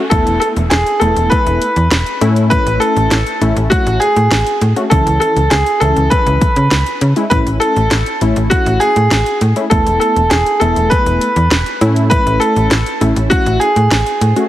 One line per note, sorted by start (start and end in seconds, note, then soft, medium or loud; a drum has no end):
0.00 downlifter medium
0.10 0.23 E1 loud
0.10 0.61 A3 medium
0.10 0.61 B3 medium
0.10 0.61 E4 medium
0.10 0.38 A4 medium
0.10 kick loud
0.10 closed hi-hat loud
0.26 0.38 E1 medium
0.26 closed hi-hat medium
0.40 0.47 A4 medium
0.40 closed hi-hat medium
0.56 0.68 E1 medium
0.56 closed hi-hat soft
0.70 0.83 E1 loud
0.70 1.02 G#4 medium
0.70 snare loud
0.70 closed hi-hat medium
0.86 closed hi-hat soft
1.00 1.13 E1 medium
1.00 1.68 A3 medium
1.00 1.68 B3 medium
1.00 1.68 E4 medium
1.00 1.31 A4 medium
1.00 closed hi-hat medium
1.16 1.28 E1 medium
1.16 closed hi-hat soft
1.30 2.17 B4 loud
1.30 kick medium
1.30 closed hi-hat medium
1.46 1.58 E1 loud
1.46 closed hi-hat medium
1.62 closed hi-hat medium
1.76 1.88 E2 medium
1.76 closed hi-hat medium
1.91 2.03 E1 loud
1.91 snare loud
1.91 closed hi-hat medium
2.06 closed hi-hat soft
2.21 2.58 A2 loud
2.21 3.17 A3 medium
2.21 3.17 C#4 medium
2.21 3.17 E4 loud
2.21 closed hi-hat medium
2.36 closed hi-hat medium
2.50 2.82 B4 loud
2.50 kick loud
2.50 closed hi-hat loud
2.66 2.78 A1 loud
2.66 closed hi-hat medium
2.80 3.37 A4 loud
2.80 closed hi-hat medium
2.96 3.08 A1 loud
2.96 closed hi-hat soft
3.11 3.23 A1 loud
3.11 snare loud
3.11 closed hi-hat medium
3.27 closed hi-hat soft
3.41 3.53 A1 loud
3.41 4.08 A3 medium
3.41 4.08 C#4 medium
3.41 4.08 E4 medium
3.41 closed hi-hat medium
3.56 3.68 A1 loud
3.56 closed hi-hat soft
3.70 3.98 F#4 medium
3.70 kick medium
3.70 closed hi-hat medium
3.86 3.98 A1 loud
3.86 closed hi-hat medium
4.00 4.57 G#4 loud
4.00 closed hi-hat medium
4.16 4.28 A2 loud
4.16 closed hi-hat medium
4.31 4.44 A1 loud
4.31 snare loud
4.31 closed hi-hat medium
4.47 closed hi-hat soft
4.61 4.74 A2 medium
4.61 closed hi-hat medium
4.76 4.85 A3 medium
4.76 4.85 C#4 medium
4.76 4.85 F#4 medium
4.76 closed hi-hat soft
4.90 5.03 C#2 loud
4.90 5.41 E3 medium
4.90 5.41 C#4 medium
4.90 5.41 E4 medium
4.90 5.18 A4 medium
4.90 kick loud
4.90 closed hi-hat loud
5.06 5.18 C#2 loud
5.06 closed hi-hat medium
5.20 5.52 A4 medium
5.20 closed hi-hat medium
5.36 5.48 C#2 medium
5.36 closed hi-hat soft
5.50 5.63 C#2 loud
5.50 5.82 G#4 medium
5.50 snare loud
5.50 closed hi-hat medium
5.66 closed hi-hat soft
5.80 5.93 C#2 medium
5.80 6.48 E3 medium
5.80 6.48 C#4 medium
5.80 6.48 E4 medium
5.80 6.09 A4 medium
5.80 closed hi-hat medium
5.96 6.08 C#2 medium
5.96 closed hi-hat soft
6.10 6.97 B4 loud
6.10 kick medium
6.10 closed hi-hat medium
6.26 6.38 C#2 loud
6.26 closed hi-hat medium
6.41 kick medium
6.41 closed hi-hat medium
6.56 6.68 C#3 medium
6.56 closed hi-hat medium
6.71 6.83 C#2 loud
6.71 snare loud
6.71 closed hi-hat medium
6.86 closed hi-hat soft
7.01 7.13 C#3 loud
7.01 closed hi-hat medium
7.16 7.25 G#3 medium
7.16 7.25 C#4 medium
7.16 7.25 E4 medium
7.16 closed hi-hat soft
7.30 7.43 A1 loud
7.30 7.81 A3 medium
7.30 7.81 C#4 medium
7.30 7.81 E4 medium
7.30 7.37 B4 loud
7.30 kick loud
7.30 closed hi-hat loud
7.46 7.58 A1 medium
7.46 closed hi-hat medium
7.60 8.17 A4 medium
7.60 closed hi-hat medium
7.76 7.88 A1 loud
7.76 closed hi-hat soft
7.91 8.03 A1 loud
7.91 snare loud
7.91 closed hi-hat medium
8.06 closed hi-hat soft
8.21 8.33 A1 loud
8.21 8.88 A3 medium
8.21 8.88 C#4 medium
8.21 8.88 E4 medium
8.21 closed hi-hat medium
8.36 8.48 A1 medium
8.36 closed hi-hat soft
8.50 8.82 F#4 medium
8.50 kick medium
8.50 closed hi-hat medium
8.66 8.78 A1 loud
8.66 closed hi-hat medium
8.80 9.37 G#4 loud
8.80 closed hi-hat medium
8.96 9.08 A2 loud
8.96 closed hi-hat medium
9.11 9.23 A1 loud
9.11 snare loud
9.11 closed hi-hat medium
9.26 closed hi-hat soft
9.41 9.53 A2 medium
9.41 closed hi-hat medium
9.56 9.65 A3 medium
9.56 9.65 C#4 medium
9.56 9.65 E4 medium
9.56 closed hi-hat soft
9.70 9.83 E1 loud
9.70 10.21 A3 medium
9.70 10.21 B3 medium
9.70 10.21 E4 medium
9.70 9.98 A4 medium
9.70 kick loud
9.70 closed hi-hat loud
9.86 9.98 E1 medium
9.86 closed hi-hat medium
10.00 10.31 A4 medium
10.00 closed hi-hat medium
10.16 10.28 E1 medium
10.16 closed hi-hat soft
10.30 10.43 E1 loud
10.30 10.58 G#4 medium
10.30 snare loud
10.30 closed hi-hat medium
10.46 closed hi-hat soft
10.60 10.73 E1 medium
10.60 11.28 A3 medium
10.60 11.28 B3 medium
10.60 11.28 E4 medium
10.60 10.91 A4 medium
10.60 closed hi-hat medium
10.76 10.88 E1 medium
10.76 closed hi-hat soft
10.90 11.77 B4 loud
10.90 kick medium
10.90 closed hi-hat medium
11.06 11.18 E1 loud
11.06 closed hi-hat medium
11.21 closed hi-hat medium
11.36 11.48 E2 loud
11.36 closed hi-hat medium
11.51 11.63 E1 loud
11.51 snare loud
11.51 closed hi-hat medium
11.66 closed hi-hat soft
11.81 12.17 A2 loud
11.81 12.77 A3 medium
11.81 12.77 C#4 medium
11.81 12.77 E4 loud
11.81 closed hi-hat medium
11.96 closed hi-hat soft
12.10 12.38 B4 loud
12.10 kick loud
12.10 closed hi-hat loud
12.10 swell medium
12.26 12.38 A1 loud
12.26 closed hi-hat medium
12.40 12.97 A4 loud
12.40 closed hi-hat medium
12.56 12.68 A1 loud
12.56 closed hi-hat soft
12.71 12.83 A1 loud
12.71 snare loud
12.71 closed hi-hat medium
12.86 closed hi-hat soft
13.01 13.13 A1 loud
13.01 13.68 A3 medium
13.01 13.68 C#4 medium
13.01 13.68 E4 medium
13.01 closed hi-hat medium
13.16 13.28 A1 loud
13.16 closed hi-hat soft
13.30 13.58 F#4 loud
13.30 kick medium
13.30 closed hi-hat medium
13.46 13.58 A1 loud
13.46 closed hi-hat medium
13.60 14.47 G#4 loud
13.60 closed hi-hat medium
13.76 13.88 A2 loud
13.76 closed hi-hat medium
13.91 14.03 A1 loud
13.91 snare loud
13.91 closed hi-hat medium
14.06 closed hi-hat soft
14.21 14.33 A2 medium
14.21 closed hi-hat medium
14.36 14.45 A3 medium
14.36 14.45 C#4 medium
14.36 14.45 F#4 medium
14.36 closed hi-hat soft